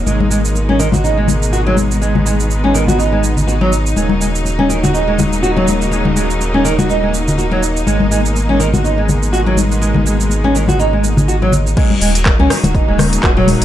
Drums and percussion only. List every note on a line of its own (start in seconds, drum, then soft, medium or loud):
0.07 muted conga soft
0.07 shaker soft
0.20 high conga medium
0.31 shaker medium
0.45 shaker medium
0.55 muted conga soft
0.55 shaker soft
0.69 high conga medium
0.80 shaker medium
0.92 muted conga medium
0.92 high conga loud
0.92 low conga medium
0.92 shaker medium
1.05 shaker soft
1.28 muted conga soft
1.28 high conga loud
1.28 low conga medium
1.28 shaker medium
1.43 shaker medium
1.53 shaker soft
1.67 muted conga soft
1.77 high conga loud
1.77 shaker medium
1.92 shaker medium
2.02 muted conga soft
2.02 shaker soft
2.15 high conga medium
2.15 low conga medium
2.27 shaker medium
2.40 shaker medium
2.50 muted conga soft
2.50 shaker soft
2.64 high conga medium
2.75 shaker medium
2.87 muted conga medium
2.87 high conga loud
2.87 low conga medium
2.87 shaker medium
3.00 shaker soft
3.24 muted conga soft
3.24 shaker medium
3.37 low conga medium
3.37 shaker medium
3.48 shaker soft
3.61 muted conga soft
3.73 shaker medium
3.87 shaker soft
3.96 muted conga soft
3.96 shaker soft
4.09 high conga medium
4.22 shaker medium
4.36 shaker medium
4.45 muted conga soft
4.45 shaker soft
4.59 high conga medium
4.70 shaker medium
4.84 muted conga soft
4.84 high conga loud
4.84 low conga medium
4.84 shaker medium
4.95 shaker soft
5.18 muted conga soft
5.18 high conga loud
5.18 low conga medium
5.18 shaker medium
5.33 shaker medium
5.44 shaker soft
5.57 muted conga soft
5.68 high conga medium
5.68 shaker medium
5.82 shaker medium
5.91 muted conga medium
5.91 shaker soft
6.05 high conga medium
6.05 low conga medium
6.17 shaker medium
6.30 shaker soft
6.41 muted conga soft
6.41 shaker soft
6.54 high conga medium
6.66 shaker medium
6.79 muted conga soft
6.79 high conga medium
6.79 low conga medium
6.79 shaker soft
6.90 shaker soft
7.13 muted conga soft
7.13 shaker medium
7.28 low conga medium
7.28 shaker medium
7.39 shaker soft
7.51 muted conga medium
7.63 shaker medium
7.77 shaker medium
7.87 muted conga medium
7.87 shaker soft
8.00 high conga medium
8.12 shaker medium
8.26 shaker soft
8.36 muted conga soft
8.36 shaker soft
8.50 high conga medium
8.60 shaker medium
8.74 muted conga medium
8.74 high conga medium
8.74 low conga medium
8.74 shaker soft
8.85 shaker soft
9.09 muted conga soft
9.09 high conga loud
9.09 low conga medium
9.09 shaker medium
9.23 shaker soft
9.34 shaker soft
9.47 muted conga medium
9.57 high conga medium
9.57 shaker medium
9.72 shaker soft
9.82 muted conga medium
9.82 shaker soft
9.94 high conga medium
9.94 low conga medium
10.07 shaker medium
10.19 high conga medium
10.19 shaker soft
10.29 muted conga soft
10.29 shaker soft
10.44 high conga medium
10.56 shaker medium
10.68 muted conga medium
10.68 high conga medium
10.68 low conga medium
10.68 shaker medium
10.80 shaker soft
11.04 muted conga soft
11.04 shaker medium
11.17 low conga medium
11.17 shaker soft
11.29 shaker soft
11.43 muted conga medium
11.52 low conga medium
11.52 shaker medium
11.67 shaker soft
11.77 kick loud
11.77 closed hi-hat soft
11.77 crash loud
11.77 muted conga medium
11.77 shaker soft
11.90 high conga medium
12.01 open hi-hat loud
12.01 shaker loud
12.15 closed hi-hat medium
12.15 shaker medium
12.26 kick loud
12.26 cross-stick medium
12.26 clap loud
12.26 closed hi-hat soft
12.26 muted conga soft
12.26 shaker soft
12.39 high conga medium
12.50 cross-stick medium
12.50 open hi-hat medium
12.50 shaker medium
12.64 closed hi-hat medium
12.64 muted conga medium
12.64 high conga loud
12.64 low conga medium
12.64 shaker medium
12.75 kick loud
12.75 closed hi-hat soft
12.75 shaker soft
12.98 cross-stick medium
12.98 open hi-hat medium
12.98 muted conga soft
12.98 high conga loud
12.98 low conga loud
12.98 shaker loud
13.13 closed hi-hat medium
13.13 shaker medium
13.23 kick loud
13.23 cross-stick loud
13.23 clap loud
13.23 closed hi-hat soft
13.23 shaker soft
13.37 mid tom medium
13.37 muted conga medium
13.47 mid tom medium
13.47 open hi-hat medium
13.47 high conga medium
13.47 shaker loud
13.62 closed hi-hat medium